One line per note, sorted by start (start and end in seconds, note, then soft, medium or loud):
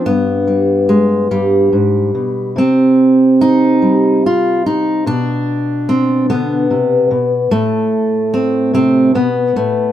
0.06 1.30 G2 medium
0.06 1.73 B3 loud
0.47 0.89 G3 soft
0.89 1.31 G#3 medium
1.31 1.72 G2 medium
1.31 2.57 G3 medium
1.73 2.14 G#2 medium
2.15 2.57 B2 soft
2.56 5.06 C3 medium
2.56 4.25 C4 medium
3.41 4.24 D#4 medium
3.82 5.02 G3 medium
4.26 4.66 F4 medium
4.66 5.07 D#4 medium
5.06 7.10 B2 medium
5.06 6.70 D4 loud
5.89 6.29 C4 medium
6.30 6.70 D3 medium
6.30 7.52 B3 medium
6.70 7.11 C3 medium
7.11 7.51 B2 medium
7.51 9.14 A2 medium
7.51 9.14 A3 loud
8.34 8.73 C4 medium
8.73 9.15 C3 medium
8.73 9.15 C4 medium
9.15 9.56 B2 medium
9.15 9.92 B3 medium
9.56 9.92 A2 soft
9.56 9.92 A3 medium